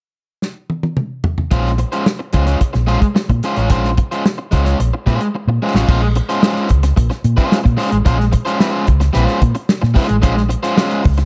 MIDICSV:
0, 0, Header, 1, 6, 480
1, 0, Start_track
1, 0, Key_signature, -5, "minor"
1, 0, Tempo, 544959
1, 1336, Time_signature, 4, 2, 24, 8
1, 9910, End_track
2, 0, Start_track
2, 0, Title_t, "Overdriven electric guitar"
2, 0, Program_c, 0, 29
2, 1331, Note_on_c, 0, 56, 72
2, 1335, Note_on_c, 0, 61, 78
2, 1338, Note_on_c, 0, 65, 88
2, 1343, Note_on_c, 0, 72, 79
2, 1492, Note_off_c, 0, 56, 0
2, 1494, Note_off_c, 0, 61, 0
2, 1496, Note_off_c, 0, 65, 0
2, 1498, Note_off_c, 0, 72, 0
2, 1691, Note_on_c, 0, 72, 49
2, 1700, Note_on_c, 0, 65, 48
2, 1702, Note_on_c, 0, 61, 44
2, 1706, Note_on_c, 0, 56, 45
2, 1804, Note_off_c, 0, 56, 0
2, 1808, Note_off_c, 0, 61, 0
2, 1810, Note_off_c, 0, 65, 0
2, 1815, Note_off_c, 0, 72, 0
2, 2052, Note_on_c, 0, 56, 52
2, 2059, Note_on_c, 0, 61, 53
2, 2062, Note_on_c, 0, 65, 60
2, 2065, Note_on_c, 0, 72, 55
2, 2162, Note_off_c, 0, 65, 0
2, 2166, Note_off_c, 0, 61, 0
2, 2168, Note_off_c, 0, 72, 0
2, 2171, Note_off_c, 0, 56, 0
2, 2172, Note_on_c, 0, 65, 48
2, 2172, Note_on_c, 0, 73, 50
2, 2176, Note_on_c, 0, 61, 49
2, 2182, Note_on_c, 0, 56, 43
2, 2283, Note_off_c, 0, 56, 0
2, 2286, Note_off_c, 0, 61, 0
2, 2291, Note_off_c, 0, 65, 0
2, 2296, Note_off_c, 0, 73, 0
2, 2527, Note_on_c, 0, 56, 75
2, 2531, Note_on_c, 0, 61, 78
2, 2535, Note_on_c, 0, 65, 88
2, 2540, Note_on_c, 0, 72, 92
2, 2642, Note_off_c, 0, 72, 0
2, 2650, Note_off_c, 0, 65, 0
2, 2653, Note_off_c, 0, 61, 0
2, 2692, Note_off_c, 0, 56, 0
2, 3028, Note_on_c, 0, 56, 56
2, 3035, Note_on_c, 0, 61, 57
2, 3039, Note_on_c, 0, 65, 68
2, 3042, Note_on_c, 0, 72, 62
2, 3142, Note_off_c, 0, 65, 0
2, 3143, Note_off_c, 0, 72, 0
2, 3146, Note_off_c, 0, 61, 0
2, 3147, Note_on_c, 0, 73, 51
2, 3149, Note_off_c, 0, 56, 0
2, 3152, Note_on_c, 0, 65, 56
2, 3156, Note_on_c, 0, 61, 47
2, 3159, Note_on_c, 0, 56, 42
2, 3248, Note_off_c, 0, 56, 0
2, 3257, Note_off_c, 0, 61, 0
2, 3259, Note_on_c, 0, 56, 76
2, 3261, Note_off_c, 0, 65, 0
2, 3267, Note_on_c, 0, 61, 89
2, 3269, Note_off_c, 0, 73, 0
2, 3271, Note_on_c, 0, 65, 83
2, 3272, Note_on_c, 0, 72, 93
2, 3419, Note_off_c, 0, 56, 0
2, 3423, Note_off_c, 0, 61, 0
2, 3425, Note_off_c, 0, 65, 0
2, 3426, Note_off_c, 0, 72, 0
2, 3624, Note_on_c, 0, 72, 51
2, 3628, Note_on_c, 0, 65, 54
2, 3633, Note_on_c, 0, 61, 50
2, 3639, Note_on_c, 0, 56, 51
2, 3734, Note_off_c, 0, 56, 0
2, 3734, Note_off_c, 0, 61, 0
2, 3739, Note_off_c, 0, 65, 0
2, 3741, Note_off_c, 0, 72, 0
2, 3975, Note_on_c, 0, 56, 58
2, 3982, Note_on_c, 0, 61, 56
2, 3985, Note_on_c, 0, 65, 53
2, 3992, Note_on_c, 0, 72, 61
2, 4089, Note_off_c, 0, 65, 0
2, 4091, Note_off_c, 0, 72, 0
2, 4094, Note_off_c, 0, 61, 0
2, 4095, Note_on_c, 0, 73, 50
2, 4099, Note_on_c, 0, 65, 56
2, 4100, Note_off_c, 0, 56, 0
2, 4104, Note_on_c, 0, 61, 53
2, 4110, Note_on_c, 0, 56, 40
2, 4210, Note_off_c, 0, 56, 0
2, 4214, Note_off_c, 0, 61, 0
2, 4216, Note_off_c, 0, 65, 0
2, 4223, Note_off_c, 0, 73, 0
2, 4459, Note_on_c, 0, 56, 78
2, 4466, Note_on_c, 0, 61, 81
2, 4471, Note_on_c, 0, 65, 88
2, 4474, Note_on_c, 0, 72, 78
2, 4583, Note_off_c, 0, 72, 0
2, 4587, Note_off_c, 0, 65, 0
2, 4593, Note_off_c, 0, 61, 0
2, 4638, Note_off_c, 0, 56, 0
2, 4953, Note_on_c, 0, 56, 60
2, 4957, Note_on_c, 0, 61, 55
2, 4960, Note_on_c, 0, 65, 58
2, 4967, Note_on_c, 0, 72, 61
2, 5067, Note_off_c, 0, 72, 0
2, 5068, Note_off_c, 0, 61, 0
2, 5068, Note_off_c, 0, 65, 0
2, 5070, Note_on_c, 0, 73, 57
2, 5072, Note_off_c, 0, 56, 0
2, 5078, Note_on_c, 0, 65, 51
2, 5079, Note_on_c, 0, 61, 47
2, 5087, Note_on_c, 0, 56, 42
2, 5172, Note_off_c, 0, 56, 0
2, 5177, Note_off_c, 0, 61, 0
2, 5182, Note_off_c, 0, 65, 0
2, 5182, Note_on_c, 0, 56, 85
2, 5188, Note_on_c, 0, 61, 77
2, 5191, Note_off_c, 0, 73, 0
2, 5193, Note_on_c, 0, 65, 92
2, 5199, Note_on_c, 0, 72, 80
2, 5294, Note_off_c, 0, 72, 0
2, 5301, Note_off_c, 0, 65, 0
2, 5302, Note_off_c, 0, 61, 0
2, 5341, Note_off_c, 0, 56, 0
2, 5540, Note_on_c, 0, 72, 61
2, 5543, Note_on_c, 0, 65, 56
2, 5548, Note_on_c, 0, 61, 57
2, 5554, Note_on_c, 0, 56, 52
2, 5646, Note_off_c, 0, 56, 0
2, 5652, Note_off_c, 0, 61, 0
2, 5656, Note_on_c, 0, 56, 92
2, 5658, Note_off_c, 0, 65, 0
2, 5658, Note_off_c, 0, 72, 0
2, 5662, Note_on_c, 0, 61, 77
2, 5668, Note_on_c, 0, 65, 94
2, 5669, Note_on_c, 0, 72, 91
2, 5881, Note_off_c, 0, 56, 0
2, 5884, Note_off_c, 0, 61, 0
2, 5887, Note_off_c, 0, 65, 0
2, 5887, Note_off_c, 0, 72, 0
2, 6489, Note_on_c, 0, 72, 82
2, 6496, Note_on_c, 0, 65, 91
2, 6497, Note_on_c, 0, 61, 77
2, 6501, Note_on_c, 0, 56, 63
2, 6671, Note_off_c, 0, 72, 0
2, 6675, Note_off_c, 0, 61, 0
2, 6675, Note_off_c, 0, 65, 0
2, 6677, Note_off_c, 0, 56, 0
2, 6844, Note_on_c, 0, 56, 85
2, 6850, Note_on_c, 0, 61, 91
2, 6852, Note_on_c, 0, 65, 84
2, 6855, Note_on_c, 0, 72, 96
2, 6955, Note_off_c, 0, 72, 0
2, 6962, Note_off_c, 0, 65, 0
2, 6965, Note_off_c, 0, 61, 0
2, 7010, Note_off_c, 0, 56, 0
2, 7092, Note_on_c, 0, 56, 82
2, 7094, Note_on_c, 0, 61, 88
2, 7101, Note_on_c, 0, 65, 100
2, 7106, Note_on_c, 0, 72, 88
2, 7196, Note_off_c, 0, 72, 0
2, 7200, Note_off_c, 0, 65, 0
2, 7207, Note_off_c, 0, 61, 0
2, 7254, Note_off_c, 0, 56, 0
2, 7445, Note_on_c, 0, 72, 60
2, 7452, Note_on_c, 0, 65, 59
2, 7458, Note_on_c, 0, 61, 58
2, 7463, Note_on_c, 0, 56, 54
2, 7554, Note_off_c, 0, 56, 0
2, 7565, Note_off_c, 0, 61, 0
2, 7565, Note_off_c, 0, 65, 0
2, 7565, Note_on_c, 0, 55, 95
2, 7572, Note_off_c, 0, 72, 0
2, 7575, Note_on_c, 0, 60, 91
2, 7576, Note_on_c, 0, 64, 90
2, 7582, Note_on_c, 0, 72, 89
2, 7662, Note_off_c, 0, 55, 0
2, 7662, Note_on_c, 0, 56, 95
2, 7672, Note_off_c, 0, 60, 0
2, 7672, Note_on_c, 0, 61, 91
2, 7673, Note_off_c, 0, 64, 0
2, 7673, Note_on_c, 0, 65, 90
2, 7792, Note_off_c, 0, 56, 0
2, 7797, Note_off_c, 0, 61, 0
2, 7798, Note_off_c, 0, 65, 0
2, 7801, Note_off_c, 0, 72, 0
2, 8043, Note_on_c, 0, 55, 79
2, 8047, Note_on_c, 0, 60, 82
2, 8052, Note_on_c, 0, 64, 85
2, 8057, Note_on_c, 0, 72, 98
2, 8140, Note_off_c, 0, 55, 0
2, 8140, Note_on_c, 0, 56, 79
2, 8144, Note_off_c, 0, 60, 0
2, 8144, Note_on_c, 0, 61, 82
2, 8149, Note_off_c, 0, 64, 0
2, 8149, Note_on_c, 0, 65, 85
2, 8270, Note_off_c, 0, 56, 0
2, 8273, Note_off_c, 0, 61, 0
2, 8275, Note_off_c, 0, 65, 0
2, 8278, Note_off_c, 0, 72, 0
2, 8757, Note_on_c, 0, 56, 90
2, 8762, Note_on_c, 0, 61, 100
2, 8770, Note_on_c, 0, 65, 101
2, 8775, Note_on_c, 0, 72, 102
2, 8870, Note_off_c, 0, 72, 0
2, 8877, Note_off_c, 0, 65, 0
2, 8880, Note_off_c, 0, 61, 0
2, 8941, Note_off_c, 0, 56, 0
2, 9001, Note_on_c, 0, 56, 83
2, 9004, Note_on_c, 0, 61, 90
2, 9010, Note_on_c, 0, 65, 88
2, 9013, Note_on_c, 0, 72, 100
2, 9112, Note_off_c, 0, 72, 0
2, 9119, Note_off_c, 0, 65, 0
2, 9123, Note_off_c, 0, 61, 0
2, 9165, Note_off_c, 0, 56, 0
2, 9361, Note_on_c, 0, 72, 71
2, 9365, Note_on_c, 0, 65, 64
2, 9372, Note_on_c, 0, 61, 59
2, 9375, Note_on_c, 0, 56, 44
2, 9469, Note_off_c, 0, 56, 0
2, 9478, Note_off_c, 0, 61, 0
2, 9479, Note_off_c, 0, 65, 0
2, 9480, Note_on_c, 0, 56, 89
2, 9481, Note_off_c, 0, 72, 0
2, 9489, Note_on_c, 0, 61, 97
2, 9490, Note_on_c, 0, 65, 92
2, 9491, Note_on_c, 0, 72, 85
2, 9707, Note_off_c, 0, 56, 0
2, 9711, Note_off_c, 0, 61, 0
2, 9711, Note_off_c, 0, 65, 0
2, 9712, Note_off_c, 0, 72, 0
2, 9910, End_track
3, 0, Start_track
3, 0, Title_t, "Fingered electric bass"
3, 0, Program_c, 1, 33
3, 1335, Note_on_c, 1, 34, 81
3, 1607, Note_off_c, 1, 34, 0
3, 2061, Note_on_c, 1, 37, 72
3, 2242, Note_off_c, 1, 37, 0
3, 2424, Note_on_c, 1, 34, 80
3, 2604, Note_off_c, 1, 34, 0
3, 2904, Note_on_c, 1, 46, 92
3, 2993, Note_off_c, 1, 46, 0
3, 3146, Note_on_c, 1, 33, 72
3, 3261, Note_off_c, 1, 33, 0
3, 3261, Note_on_c, 1, 34, 105
3, 3533, Note_off_c, 1, 34, 0
3, 3989, Note_on_c, 1, 37, 82
3, 4168, Note_off_c, 1, 37, 0
3, 4227, Note_on_c, 1, 34, 85
3, 4316, Note_off_c, 1, 34, 0
3, 4468, Note_on_c, 1, 46, 84
3, 4557, Note_off_c, 1, 46, 0
3, 4822, Note_on_c, 1, 46, 88
3, 4913, Note_off_c, 1, 46, 0
3, 5058, Note_on_c, 1, 33, 70
3, 5151, Note_off_c, 1, 33, 0
3, 5183, Note_on_c, 1, 34, 91
3, 5454, Note_off_c, 1, 34, 0
3, 5904, Note_on_c, 1, 37, 84
3, 6084, Note_off_c, 1, 37, 0
3, 6144, Note_on_c, 1, 34, 99
3, 6234, Note_off_c, 1, 34, 0
3, 6381, Note_on_c, 1, 46, 90
3, 6471, Note_off_c, 1, 46, 0
3, 6740, Note_on_c, 1, 46, 89
3, 6831, Note_off_c, 1, 46, 0
3, 6980, Note_on_c, 1, 33, 71
3, 7070, Note_off_c, 1, 33, 0
3, 7098, Note_on_c, 1, 34, 94
3, 7369, Note_off_c, 1, 34, 0
3, 7821, Note_on_c, 1, 37, 86
3, 8000, Note_off_c, 1, 37, 0
3, 8063, Note_on_c, 1, 34, 95
3, 8151, Note_off_c, 1, 34, 0
3, 8295, Note_on_c, 1, 46, 100
3, 8386, Note_off_c, 1, 46, 0
3, 8660, Note_on_c, 1, 46, 88
3, 8748, Note_off_c, 1, 46, 0
3, 8899, Note_on_c, 1, 33, 76
3, 9014, Note_off_c, 1, 33, 0
3, 9014, Note_on_c, 1, 34, 110
3, 9284, Note_off_c, 1, 34, 0
3, 9738, Note_on_c, 1, 37, 85
3, 9910, Note_off_c, 1, 37, 0
3, 9910, End_track
4, 0, Start_track
4, 0, Title_t, "Muted fingered electric bass strokes"
4, 2299, Note_on_c, 9, 29, 42
4, 2387, Note_off_c, 9, 29, 0
4, 9910, End_track
5, 0, Start_track
5, 0, Title_t, "Muted overdriven electric guitar strokes"
5, 1569, Note_on_c, 9, 29, 41
5, 1657, Note_off_c, 9, 29, 0
5, 1814, Note_on_c, 9, 29, 38
5, 1902, Note_off_c, 9, 29, 0
5, 1931, Note_on_c, 9, 29, 48
5, 2019, Note_off_c, 9, 29, 0
5, 2294, Note_on_c, 9, 29, 47
5, 2382, Note_off_c, 9, 29, 0
5, 2406, Note_on_c, 9, 29, 41
5, 2495, Note_off_c, 9, 29, 0
5, 2653, Note_on_c, 9, 29, 32
5, 2741, Note_off_c, 9, 29, 0
5, 2773, Note_on_c, 9, 29, 33
5, 2861, Note_off_c, 9, 29, 0
5, 2903, Note_on_c, 9, 29, 43
5, 2991, Note_off_c, 9, 29, 0
5, 3502, Note_on_c, 9, 29, 39
5, 3590, Note_off_c, 9, 29, 0
5, 3744, Note_on_c, 9, 29, 35
5, 3833, Note_off_c, 9, 29, 0
5, 3858, Note_on_c, 9, 29, 40
5, 3946, Note_off_c, 9, 29, 0
5, 4221, Note_on_c, 9, 29, 37
5, 4309, Note_off_c, 9, 29, 0
5, 4347, Note_on_c, 9, 29, 46
5, 4435, Note_off_c, 9, 29, 0
5, 4593, Note_on_c, 9, 29, 39
5, 4681, Note_off_c, 9, 29, 0
5, 4710, Note_on_c, 9, 29, 39
5, 4798, Note_off_c, 9, 29, 0
5, 4831, Note_on_c, 9, 29, 44
5, 4920, Note_off_c, 9, 29, 0
5, 5304, Note_on_c, 9, 29, 41
5, 5392, Note_off_c, 9, 29, 0
5, 5425, Note_on_c, 9, 29, 42
5, 5513, Note_off_c, 9, 29, 0
5, 5894, Note_on_c, 9, 29, 36
5, 5982, Note_off_c, 9, 29, 0
5, 6019, Note_on_c, 9, 29, 39
5, 6107, Note_off_c, 9, 29, 0
5, 6134, Note_on_c, 9, 29, 40
5, 6222, Note_off_c, 9, 29, 0
5, 6253, Note_on_c, 9, 29, 42
5, 6341, Note_off_c, 9, 29, 0
5, 6729, Note_on_c, 9, 29, 49
5, 6817, Note_off_c, 9, 29, 0
5, 6965, Note_on_c, 9, 29, 39
5, 7053, Note_off_c, 9, 29, 0
5, 7207, Note_on_c, 9, 29, 51
5, 7295, Note_off_c, 9, 29, 0
5, 7327, Note_on_c, 9, 29, 44
5, 7415, Note_off_c, 9, 29, 0
5, 7813, Note_on_c, 9, 29, 31
5, 7901, Note_off_c, 9, 29, 0
5, 7929, Note_on_c, 9, 29, 44
5, 8017, Note_off_c, 9, 29, 0
5, 8290, Note_on_c, 9, 29, 46
5, 8378, Note_off_c, 9, 29, 0
5, 8410, Note_on_c, 9, 29, 43
5, 8498, Note_off_c, 9, 29, 0
5, 8645, Note_on_c, 9, 29, 56
5, 8733, Note_off_c, 9, 29, 0
5, 8880, Note_on_c, 9, 29, 42
5, 8968, Note_off_c, 9, 29, 0
5, 9122, Note_on_c, 9, 29, 44
5, 9211, Note_off_c, 9, 29, 0
5, 9241, Note_on_c, 9, 29, 41
5, 9329, Note_off_c, 9, 29, 0
5, 9727, Note_on_c, 9, 29, 45
5, 9815, Note_off_c, 9, 29, 0
5, 9845, Note_on_c, 9, 29, 45
5, 9910, Note_off_c, 9, 29, 0
5, 9910, End_track
6, 0, Start_track
6, 0, Title_t, "Drums"
6, 373, Note_on_c, 9, 38, 48
6, 461, Note_off_c, 9, 38, 0
6, 614, Note_on_c, 9, 48, 53
6, 702, Note_off_c, 9, 48, 0
6, 734, Note_on_c, 9, 48, 63
6, 822, Note_off_c, 9, 48, 0
6, 851, Note_on_c, 9, 47, 79
6, 939, Note_off_c, 9, 47, 0
6, 1091, Note_on_c, 9, 43, 93
6, 1179, Note_off_c, 9, 43, 0
6, 1214, Note_on_c, 9, 43, 77
6, 1302, Note_off_c, 9, 43, 0
6, 1333, Note_on_c, 9, 42, 83
6, 1335, Note_on_c, 9, 36, 97
6, 1421, Note_off_c, 9, 42, 0
6, 1423, Note_off_c, 9, 36, 0
6, 1460, Note_on_c, 9, 38, 33
6, 1548, Note_off_c, 9, 38, 0
6, 1571, Note_on_c, 9, 42, 68
6, 1659, Note_off_c, 9, 42, 0
6, 1696, Note_on_c, 9, 42, 48
6, 1784, Note_off_c, 9, 42, 0
6, 1817, Note_on_c, 9, 38, 110
6, 1905, Note_off_c, 9, 38, 0
6, 2049, Note_on_c, 9, 42, 61
6, 2063, Note_on_c, 9, 36, 90
6, 2137, Note_off_c, 9, 42, 0
6, 2151, Note_off_c, 9, 36, 0
6, 2173, Note_on_c, 9, 42, 55
6, 2174, Note_on_c, 9, 38, 31
6, 2261, Note_off_c, 9, 42, 0
6, 2262, Note_off_c, 9, 38, 0
6, 2297, Note_on_c, 9, 42, 83
6, 2300, Note_on_c, 9, 36, 79
6, 2385, Note_off_c, 9, 42, 0
6, 2388, Note_off_c, 9, 36, 0
6, 2417, Note_on_c, 9, 42, 33
6, 2419, Note_on_c, 9, 38, 31
6, 2505, Note_off_c, 9, 42, 0
6, 2507, Note_off_c, 9, 38, 0
6, 2539, Note_on_c, 9, 42, 51
6, 2627, Note_off_c, 9, 42, 0
6, 2657, Note_on_c, 9, 42, 45
6, 2659, Note_on_c, 9, 36, 88
6, 2746, Note_off_c, 9, 42, 0
6, 2747, Note_off_c, 9, 36, 0
6, 2782, Note_on_c, 9, 38, 96
6, 2870, Note_off_c, 9, 38, 0
6, 2902, Note_on_c, 9, 36, 77
6, 2903, Note_on_c, 9, 42, 31
6, 2990, Note_off_c, 9, 36, 0
6, 2991, Note_off_c, 9, 42, 0
6, 3020, Note_on_c, 9, 42, 62
6, 3108, Note_off_c, 9, 42, 0
6, 3139, Note_on_c, 9, 42, 47
6, 3227, Note_off_c, 9, 42, 0
6, 3257, Note_on_c, 9, 42, 84
6, 3262, Note_on_c, 9, 36, 95
6, 3346, Note_off_c, 9, 42, 0
6, 3350, Note_off_c, 9, 36, 0
6, 3387, Note_on_c, 9, 38, 35
6, 3475, Note_off_c, 9, 38, 0
6, 3500, Note_on_c, 9, 42, 75
6, 3506, Note_on_c, 9, 36, 82
6, 3588, Note_off_c, 9, 42, 0
6, 3595, Note_off_c, 9, 36, 0
6, 3629, Note_on_c, 9, 42, 52
6, 3717, Note_off_c, 9, 42, 0
6, 3748, Note_on_c, 9, 38, 123
6, 3836, Note_off_c, 9, 38, 0
6, 3981, Note_on_c, 9, 42, 60
6, 3990, Note_on_c, 9, 36, 83
6, 4069, Note_off_c, 9, 42, 0
6, 4078, Note_off_c, 9, 36, 0
6, 4106, Note_on_c, 9, 42, 57
6, 4107, Note_on_c, 9, 38, 36
6, 4194, Note_off_c, 9, 42, 0
6, 4195, Note_off_c, 9, 38, 0
6, 4228, Note_on_c, 9, 42, 81
6, 4316, Note_off_c, 9, 42, 0
6, 4466, Note_on_c, 9, 36, 72
6, 4467, Note_on_c, 9, 42, 47
6, 4554, Note_off_c, 9, 36, 0
6, 4555, Note_off_c, 9, 42, 0
6, 4586, Note_on_c, 9, 42, 47
6, 4674, Note_off_c, 9, 42, 0
6, 5068, Note_on_c, 9, 38, 75
6, 5156, Note_off_c, 9, 38, 0
6, 5184, Note_on_c, 9, 36, 107
6, 5186, Note_on_c, 9, 49, 78
6, 5272, Note_off_c, 9, 36, 0
6, 5274, Note_off_c, 9, 49, 0
6, 5421, Note_on_c, 9, 42, 76
6, 5509, Note_off_c, 9, 42, 0
6, 5547, Note_on_c, 9, 42, 52
6, 5635, Note_off_c, 9, 42, 0
6, 5662, Note_on_c, 9, 38, 122
6, 5750, Note_off_c, 9, 38, 0
6, 5786, Note_on_c, 9, 42, 38
6, 5874, Note_off_c, 9, 42, 0
6, 5894, Note_on_c, 9, 42, 65
6, 5907, Note_on_c, 9, 36, 95
6, 5982, Note_off_c, 9, 42, 0
6, 5995, Note_off_c, 9, 36, 0
6, 6017, Note_on_c, 9, 42, 65
6, 6018, Note_on_c, 9, 38, 36
6, 6105, Note_off_c, 9, 42, 0
6, 6106, Note_off_c, 9, 38, 0
6, 6142, Note_on_c, 9, 42, 78
6, 6143, Note_on_c, 9, 36, 92
6, 6230, Note_off_c, 9, 42, 0
6, 6231, Note_off_c, 9, 36, 0
6, 6259, Note_on_c, 9, 42, 34
6, 6262, Note_on_c, 9, 38, 32
6, 6348, Note_off_c, 9, 42, 0
6, 6350, Note_off_c, 9, 38, 0
6, 6380, Note_on_c, 9, 42, 53
6, 6468, Note_off_c, 9, 42, 0
6, 6499, Note_on_c, 9, 36, 84
6, 6501, Note_on_c, 9, 42, 44
6, 6588, Note_off_c, 9, 36, 0
6, 6589, Note_off_c, 9, 42, 0
6, 6624, Note_on_c, 9, 38, 91
6, 6712, Note_off_c, 9, 38, 0
6, 6743, Note_on_c, 9, 36, 78
6, 6747, Note_on_c, 9, 42, 31
6, 6831, Note_off_c, 9, 36, 0
6, 6835, Note_off_c, 9, 42, 0
6, 6864, Note_on_c, 9, 46, 77
6, 6952, Note_off_c, 9, 46, 0
6, 6979, Note_on_c, 9, 42, 54
6, 7067, Note_off_c, 9, 42, 0
6, 7098, Note_on_c, 9, 42, 78
6, 7099, Note_on_c, 9, 36, 109
6, 7186, Note_off_c, 9, 42, 0
6, 7187, Note_off_c, 9, 36, 0
6, 7225, Note_on_c, 9, 38, 35
6, 7313, Note_off_c, 9, 38, 0
6, 7334, Note_on_c, 9, 42, 75
6, 7342, Note_on_c, 9, 36, 84
6, 7422, Note_off_c, 9, 42, 0
6, 7430, Note_off_c, 9, 36, 0
6, 7463, Note_on_c, 9, 42, 56
6, 7551, Note_off_c, 9, 42, 0
6, 7578, Note_on_c, 9, 38, 117
6, 7666, Note_off_c, 9, 38, 0
6, 7812, Note_on_c, 9, 42, 58
6, 7823, Note_on_c, 9, 36, 101
6, 7900, Note_off_c, 9, 42, 0
6, 7912, Note_off_c, 9, 36, 0
6, 7935, Note_on_c, 9, 42, 57
6, 7936, Note_on_c, 9, 38, 36
6, 8023, Note_off_c, 9, 42, 0
6, 8024, Note_off_c, 9, 38, 0
6, 8057, Note_on_c, 9, 42, 80
6, 8145, Note_off_c, 9, 42, 0
6, 8177, Note_on_c, 9, 42, 37
6, 8265, Note_off_c, 9, 42, 0
6, 8294, Note_on_c, 9, 42, 63
6, 8296, Note_on_c, 9, 36, 83
6, 8382, Note_off_c, 9, 42, 0
6, 8384, Note_off_c, 9, 36, 0
6, 8410, Note_on_c, 9, 42, 49
6, 8498, Note_off_c, 9, 42, 0
6, 8535, Note_on_c, 9, 38, 100
6, 8623, Note_off_c, 9, 38, 0
6, 8661, Note_on_c, 9, 38, 33
6, 8749, Note_off_c, 9, 38, 0
6, 8773, Note_on_c, 9, 36, 87
6, 8774, Note_on_c, 9, 46, 77
6, 8861, Note_off_c, 9, 36, 0
6, 8862, Note_off_c, 9, 46, 0
6, 8889, Note_on_c, 9, 42, 51
6, 8977, Note_off_c, 9, 42, 0
6, 9011, Note_on_c, 9, 42, 87
6, 9013, Note_on_c, 9, 36, 108
6, 9099, Note_off_c, 9, 42, 0
6, 9102, Note_off_c, 9, 36, 0
6, 9138, Note_on_c, 9, 38, 33
6, 9226, Note_off_c, 9, 38, 0
6, 9252, Note_on_c, 9, 42, 84
6, 9340, Note_off_c, 9, 42, 0
6, 9373, Note_on_c, 9, 42, 56
6, 9461, Note_off_c, 9, 42, 0
6, 9491, Note_on_c, 9, 38, 126
6, 9579, Note_off_c, 9, 38, 0
6, 9612, Note_on_c, 9, 42, 39
6, 9700, Note_off_c, 9, 42, 0
6, 9725, Note_on_c, 9, 46, 47
6, 9737, Note_on_c, 9, 36, 97
6, 9813, Note_off_c, 9, 46, 0
6, 9825, Note_off_c, 9, 36, 0
6, 9844, Note_on_c, 9, 42, 57
6, 9845, Note_on_c, 9, 38, 35
6, 9910, Note_off_c, 9, 38, 0
6, 9910, Note_off_c, 9, 42, 0
6, 9910, End_track
0, 0, End_of_file